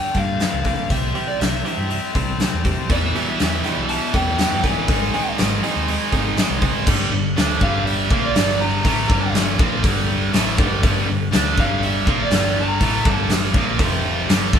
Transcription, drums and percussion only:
0.14 kick medium
0.14 open hi-hat soft
0.40 snare loud
0.40 open hi-hat medium
0.64 kick medium
0.64 open hi-hat medium
0.90 kick medium
0.90 open hi-hat medium
1.15 open hi-hat medium
1.41 snare loud
1.41 open hi-hat medium
1.66 open hi-hat medium
1.90 open hi-hat medium
2.15 kick medium
2.15 open hi-hat medium
2.40 snare loud
2.40 open hi-hat medium
2.65 kick medium
2.65 open hi-hat medium
2.90 kick loud
2.90 open hi-hat medium
3.15 open hi-hat medium
3.39 snare loud
3.39 open hi-hat medium
3.64 snare soft
3.64 open hi-hat soft
3.89 open hi-hat medium
4.14 kick medium
4.14 open hi-hat soft
4.38 snare loud
4.38 open hi-hat medium
4.64 kick medium
4.64 open hi-hat medium
4.88 kick loud
4.88 open hi-hat medium
5.14 open hi-hat medium
5.38 snare loud
5.38 open hi-hat medium
5.63 open hi-hat medium
5.88 open hi-hat medium
6.12 kick medium
6.12 open hi-hat medium
6.37 snare loud
6.37 open hi-hat medium
6.62 kick medium
6.62 open hi-hat medium
6.87 kick loud
6.87 crash loud
7.37 snare loud
7.37 open hi-hat medium
7.61 kick medium
7.87 open hi-hat medium
8.11 kick loud
8.35 snare loud
8.35 open hi-hat medium
8.85 kick loud
8.85 open hi-hat medium
9.10 kick loud
9.34 snare loud
9.34 open hi-hat medium
9.59 kick loud
9.84 kick loud
9.84 open hi-hat medium
10.33 snare loud
10.33 open hi-hat medium
10.58 kick loud
10.83 kick loud
10.83 open hi-hat medium
11.32 snare loud
11.32 open hi-hat medium
11.58 kick loud
11.58 snare soft
11.83 open hi-hat medium
12.07 kick loud
12.31 snare loud
12.31 open hi-hat medium
12.81 kick medium
12.81 open hi-hat medium
13.05 kick loud
13.29 snare loud
13.29 open hi-hat medium
13.54 kick loud
13.79 kick loud
13.79 open hi-hat medium
14.29 snare loud
14.29 open hi-hat medium
14.53 kick loud

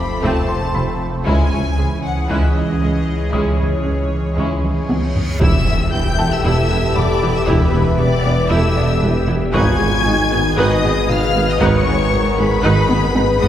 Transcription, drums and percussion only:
0.23 taiko medium
1.26 taiko medium
2.30 taiko medium
3.33 taiko medium
3.60 taiko low soft
4.37 taiko medium
4.64 taiko mid medium
4.89 taiko high medium
5.15 taiko low medium
5.41 taiko medium
6.96 taiko low-mid medium
7.48 taiko medium
9.02 taiko low-mid medium
9.54 taiko loud
11.09 taiko low-mid medium
11.60 taiko loud
12.89 taiko high medium
13.15 taiko high loud
13.42 taiko low loud

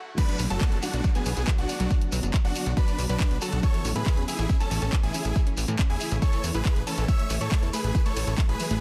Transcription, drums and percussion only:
0.18 kick loud
0.18 closed hi-hat medium
0.18 crash loud
0.18 shekere medium
0.29 closed hi-hat medium
0.38 open hi-hat loud
0.38 shekere medium
0.50 closed hi-hat medium
0.50 shekere soft
0.61 kick loud
0.61 clap loud
0.61 closed hi-hat medium
0.61 shekere medium
0.72 closed hi-hat medium
0.82 open hi-hat loud
0.82 shekere loud
0.94 closed hi-hat medium
0.94 shekere soft
1.04 kick loud
1.04 closed hi-hat medium
1.04 shekere medium
1.15 closed hi-hat medium
1.15 shekere soft
1.26 open hi-hat loud
1.26 shekere medium
1.37 closed hi-hat medium
1.37 shekere soft
1.47 kick loud
1.47 clap loud
1.47 closed hi-hat medium
1.47 shekere medium
1.58 closed hi-hat medium
1.69 open hi-hat loud
1.69 shekere medium
1.80 closed hi-hat medium
1.80 shekere soft
1.91 kick loud
1.91 closed hi-hat medium
1.91 shekere soft
2.01 closed hi-hat medium
2.12 open hi-hat loud
2.12 shekere medium
2.23 closed hi-hat medium
2.23 shekere soft
2.34 kick loud
2.34 clap loud
2.34 closed hi-hat medium
2.34 shekere medium
2.45 open hi-hat medium
2.55 open hi-hat loud
2.55 shekere medium
2.66 closed hi-hat medium
2.66 shekere soft
2.77 kick loud
2.77 closed hi-hat medium
2.77 shekere medium
2.88 closed hi-hat medium
2.88 shekere soft
2.99 open hi-hat loud
2.99 shekere medium
3.09 closed hi-hat medium
3.09 shekere soft
3.20 kick loud
3.20 clap loud
3.20 closed hi-hat medium
3.20 shekere soft
3.31 closed hi-hat medium
3.41 open hi-hat loud
3.41 shekere loud
3.51 closed hi-hat medium
3.51 shekere soft
3.63 kick loud
3.63 closed hi-hat medium
3.63 shekere medium
3.74 closed hi-hat medium
3.85 open hi-hat loud
3.85 shekere medium
3.96 closed hi-hat medium
3.96 shekere soft
4.06 kick loud
4.06 clap loud
4.06 closed hi-hat medium
4.06 shekere medium
4.17 closed hi-hat medium
4.28 open hi-hat loud
4.28 shekere medium
4.39 closed hi-hat medium
4.39 shekere soft
4.49 kick loud
4.49 closed hi-hat medium
4.49 shekere medium
4.60 closed hi-hat medium
4.60 shekere soft
4.71 open hi-hat loud
4.71 shekere medium
4.82 closed hi-hat medium
4.82 shekere soft
4.92 kick loud
4.92 clap loud
4.92 closed hi-hat medium
4.92 shekere medium
5.03 closed hi-hat medium
5.14 open hi-hat loud
5.14 shekere loud
5.24 closed hi-hat medium
5.24 shekere soft
5.35 kick loud
5.35 closed hi-hat medium
5.35 shekere medium
5.47 closed hi-hat medium
5.57 open hi-hat loud
5.57 shekere medium
5.68 closed hi-hat medium
5.68 shekere soft
5.79 kick loud
5.79 clap loud
5.79 closed hi-hat medium
5.79 shekere medium
5.90 open hi-hat medium
6.00 open hi-hat loud
6.00 shekere loud
6.11 closed hi-hat medium
6.11 shekere soft
6.22 kick loud
6.22 closed hi-hat medium
6.22 shekere medium
6.32 closed hi-hat medium
6.32 shekere soft
6.44 open hi-hat loud
6.44 shekere loud
6.54 closed hi-hat medium
6.54 shekere soft
6.65 kick loud
6.65 clap loud
6.65 closed hi-hat medium
6.65 shekere medium
6.76 closed hi-hat medium
6.87 open hi-hat loud
6.87 shekere medium
6.97 closed hi-hat medium
6.97 shekere soft
7.08 kick loud
7.08 closed hi-hat medium
7.08 ride medium
7.08 shekere medium
7.19 closed hi-hat medium
7.30 open hi-hat loud
7.30 ride medium
7.30 shekere medium
7.40 closed hi-hat medium
7.40 shekere soft
7.51 kick loud
7.51 clap loud
7.51 closed hi-hat medium
7.51 ride medium
7.51 shekere medium
7.63 closed hi-hat medium
7.73 open hi-hat loud
7.73 ride medium
7.73 shekere medium
7.84 closed hi-hat medium
7.84 shekere soft
7.95 kick loud
7.95 closed hi-hat medium
7.95 ride medium
7.95 shekere medium
8.05 closed hi-hat medium
8.05 shekere soft
8.16 open hi-hat loud
8.16 ride medium
8.16 shekere medium
8.27 closed hi-hat medium
8.27 shekere soft
8.37 kick loud
8.37 clap loud
8.37 closed hi-hat medium
8.37 ride medium
8.37 shekere soft
8.49 closed hi-hat medium
8.59 open hi-hat loud
8.59 ride medium
8.59 shekere medium
8.71 closed hi-hat medium
8.71 shekere soft

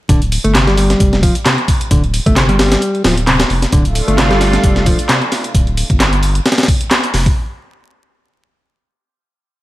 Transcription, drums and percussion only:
0.09 kick loud
0.09 closed hi-hat medium
0.22 closed hi-hat soft
0.32 closed hi-hat medium
0.32 open hi-hat medium
0.44 closed hi-hat medium
0.55 snare loud
0.55 clap loud
0.55 closed hi-hat medium
0.67 snare soft
0.67 closed hi-hat soft
0.77 closed hi-hat medium
0.77 open hi-hat medium
0.90 snare soft
0.90 closed hi-hat medium
1.00 kick loud
1.00 closed hi-hat medium
1.13 snare soft
1.13 closed hi-hat soft
1.23 kick medium
1.23 closed hi-hat medium
1.23 open hi-hat medium
1.35 closed hi-hat medium
1.35 closed hi-hat soft
1.46 snare loud
1.46 clap loud
1.46 closed hi-hat medium
1.58 closed hi-hat soft
1.68 kick loud
1.68 closed hi-hat medium
1.68 open hi-hat medium
1.81 closed hi-hat medium
1.91 kick loud
1.91 closed hi-hat medium
2.04 closed hi-hat soft
2.14 closed hi-hat medium
2.14 open hi-hat medium
2.26 kick medium
2.26 closed hi-hat medium
2.36 snare loud
2.36 clap loud
2.36 closed hi-hat medium
2.49 closed hi-hat soft
2.59 snare loud
2.59 closed hi-hat medium
2.59 open hi-hat medium
2.72 snare loud
2.72 closed hi-hat medium
2.82 closed hi-hat medium
2.95 closed hi-hat soft
3.04 snare loud
3.04 closed hi-hat medium
3.04 open hi-hat medium
3.18 closed hi-hat medium
3.27 snare medium
3.27 clap loud
3.27 closed hi-hat medium
3.40 snare loud
3.40 closed hi-hat medium
3.40 closed hi-hat soft
3.50 open hi-hat medium
3.62 snare medium
3.62 closed hi-hat medium
3.72 kick loud
3.72 closed hi-hat medium
3.85 closed hi-hat soft
3.95 closed hi-hat medium
3.95 open hi-hat medium
4.08 closed hi-hat medium
4.18 snare loud
4.18 clap loud
4.18 closed hi-hat medium
4.31 snare medium
4.31 closed hi-hat soft
4.41 snare medium
4.41 closed hi-hat medium
4.41 open hi-hat medium
4.53 snare soft
4.53 closed hi-hat medium
4.63 kick loud
4.63 closed hi-hat medium
4.76 snare soft
4.76 closed hi-hat soft
4.86 kick loud
4.86 closed hi-hat medium
4.86 open hi-hat medium
4.99 closed hi-hat soft
4.99 closed hi-hat medium
5.09 snare loud
5.09 clap loud
5.09 closed hi-hat medium
5.22 closed hi-hat soft
5.32 snare medium
5.32 closed hi-hat medium
5.32 open hi-hat medium
5.44 closed hi-hat medium
5.55 kick loud
5.55 closed hi-hat medium
5.67 closed hi-hat soft
5.77 closed hi-hat medium
5.77 open hi-hat medium
5.90 kick medium
5.90 closed hi-hat medium
6.00 snare loud
6.00 clap loud
6.00 closed hi-hat medium
6.13 closed hi-hat soft
6.23 closed hi-hat medium
6.23 open hi-hat medium
6.35 closed hi-hat medium
6.46 snare medium
6.46 closed hi-hat medium
6.52 snare loud
6.52 closed hi-hat medium
6.58 snare medium
6.58 closed hi-hat soft
6.58 closed hi-hat medium
6.63 snare medium
6.63 closed hi-hat medium
6.68 kick loud
6.68 closed hi-hat medium
6.68 open hi-hat medium
6.81 closed hi-hat medium
6.91 snare loud
6.91 clap loud
6.91 closed hi-hat medium
7.04 closed hi-hat soft
7.14 snare soft
7.14 open hi-hat medium
7.26 kick loud
7.26 closed hi-hat medium

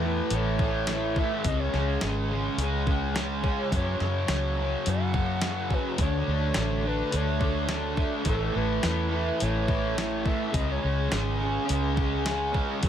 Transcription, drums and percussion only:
0.30 open hi-hat medium
0.59 kick medium
0.87 snare medium
0.87 open hi-hat medium
1.16 kick medium
1.44 kick loud
1.44 open hi-hat medium
1.74 snare soft
2.01 snare loud
2.01 open hi-hat medium
2.59 open hi-hat medium
2.87 kick medium
3.16 snare loud
3.16 open hi-hat soft
3.44 kick medium
3.72 kick loud
3.72 open hi-hat soft
4.00 snare soft
4.28 snare loud
4.28 open hi-hat soft
4.86 open hi-hat soft
5.14 kick medium
5.41 snare loud
5.41 open hi-hat soft
5.70 kick medium
5.98 kick loud
5.98 open hi-hat medium
6.54 snare loud
6.54 open hi-hat medium
7.12 open hi-hat medium
7.41 kick medium
7.69 snare medium
7.69 open hi-hat soft
7.97 kick medium
8.25 kick loud
8.25 open hi-hat soft
8.83 snare loud
8.83 open hi-hat soft
9.40 open hi-hat medium
9.68 kick medium
9.98 snare medium
9.98 open hi-hat medium
10.26 kick medium
10.54 kick loud
10.54 open hi-hat soft
11.12 snare loud
11.12 open hi-hat medium
11.69 open hi-hat medium
11.97 kick medium
12.26 snare medium
12.26 open hi-hat medium
12.54 kick medium
12.83 kick loud
12.83 open hi-hat soft

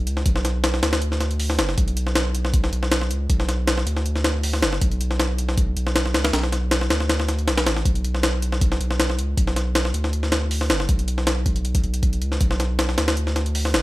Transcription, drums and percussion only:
0.07 closed hi-hat medium
0.17 snare soft
0.26 kick loud
0.26 closed hi-hat medium
0.36 snare soft
0.45 snare soft
0.45 closed hi-hat medium
0.64 snare loud
0.64 closed hi-hat medium
0.74 snare medium
0.83 snare loud
0.83 closed hi-hat medium
0.93 snare loud
0.93 closed hi-hat medium
1.02 closed hi-hat medium
1.12 snare soft
1.21 snare medium
1.21 closed hi-hat medium
1.31 closed hi-hat soft
1.40 open hi-hat medium
1.50 snare medium
1.59 snare loud
1.59 closed hi-hat medium
1.69 snare soft
1.78 kick loud
1.78 closed hi-hat medium
1.88 closed hi-hat soft
1.97 closed hi-hat medium
2.07 snare soft
2.15 snare loud
2.15 closed hi-hat medium
2.35 closed hi-hat medium
2.45 snare medium
2.54 kick loud
2.54 closed hi-hat medium
2.64 snare medium
2.73 closed hi-hat medium
2.83 snare medium
2.92 snare loud
2.92 closed hi-hat medium
3.02 snare soft
3.11 closed hi-hat medium
3.30 kick loud
3.30 closed hi-hat medium
3.40 snare soft
3.49 snare medium
3.49 closed hi-hat medium
3.67 snare loud
3.67 closed hi-hat medium
3.78 snare medium
3.87 closed hi-hat medium
3.97 snare soft
4.06 closed hi-hat medium
4.16 snare soft
4.24 snare loud
4.24 closed hi-hat medium
4.43 open hi-hat medium
4.53 snare medium
4.62 snare loud
4.62 closed hi-hat medium
4.73 snare medium
4.82 kick loud
4.82 closed hi-hat medium
4.92 closed hi-hat soft
5.01 closed hi-hat medium
5.11 snare soft
5.20 snare loud
5.20 closed hi-hat medium
5.38 closed hi-hat medium
5.49 snare medium
5.58 kick loud
5.58 closed hi-hat medium
5.77 closed hi-hat medium
5.87 snare medium
5.96 snare loud
5.96 closed hi-hat medium
6.06 snare soft
6.14 snare loud
6.14 closed hi-hat medium
6.24 snare loud
6.24 closed hi-hat medium
6.33 snare loud
6.33 closed hi-hat medium
6.43 snare soft
6.52 snare soft
6.52 closed hi-hat medium
6.71 snare loud
6.71 closed hi-hat medium
6.81 snare medium
6.90 snare loud
6.90 closed hi-hat medium
7.00 snare soft
7.09 snare loud
7.09 closed hi-hat medium
7.20 snare medium
7.29 snare medium
7.29 closed hi-hat medium
7.39 closed hi-hat soft
7.48 snare loud
7.48 closed hi-hat medium
7.58 snare loud
7.58 closed hi-hat medium
7.67 snare loud
7.67 closed hi-hat medium
7.76 snare medium
7.85 kick loud
7.85 closed hi-hat medium
7.95 closed hi-hat soft
8.04 closed hi-hat medium
8.15 snare soft
8.23 snare loud
8.23 closed hi-hat medium
8.42 closed hi-hat medium
8.52 snare medium
8.61 kick loud
8.61 closed hi-hat medium
8.72 snare medium
8.81 closed hi-hat medium
8.91 snare soft
9.00 snare loud
9.00 closed hi-hat medium
9.10 snare soft
9.19 closed hi-hat medium
9.37 kick loud
9.37 closed hi-hat medium
9.47 snare soft
9.56 snare medium
9.56 closed hi-hat medium
9.75 snare loud
9.75 closed hi-hat medium
9.85 snare medium
9.94 closed hi-hat medium
10.04 snare soft
10.13 closed hi-hat medium
10.23 snare soft
10.32 snare loud
10.32 closed hi-hat medium
10.51 open hi-hat medium
10.61 snare medium
10.70 snare loud
10.70 closed hi-hat medium
10.80 snare medium
10.89 kick loud
10.89 closed hi-hat medium
10.99 closed hi-hat soft
11.08 closed hi-hat medium
11.18 snare soft
11.27 snare loud
11.27 closed hi-hat medium
11.46 kick loud
11.46 closed hi-hat medium
11.56 closed hi-hat soft
11.65 closed hi-hat medium
11.75 kick loud
11.75 closed hi-hat medium
11.84 closed hi-hat soft
11.94 closed hi-hat medium
12.03 kick loud
12.03 closed hi-hat medium
12.13 closed hi-hat soft
12.22 closed hi-hat medium
12.32 snare soft
12.41 kick loud
12.41 closed hi-hat medium
12.51 snare soft
12.60 snare soft
12.60 closed hi-hat medium
12.79 snare loud
12.79 closed hi-hat medium
12.89 snare medium
12.98 snare loud
12.98 closed hi-hat medium
13.08 snare loud
13.08 closed hi-hat medium
13.17 closed hi-hat medium
13.27 snare soft
13.36 snare medium
13.36 closed hi-hat medium
13.46 closed hi-hat soft
13.55 open hi-hat medium
13.65 snare medium
13.74 snare loud
13.74 closed hi-hat medium

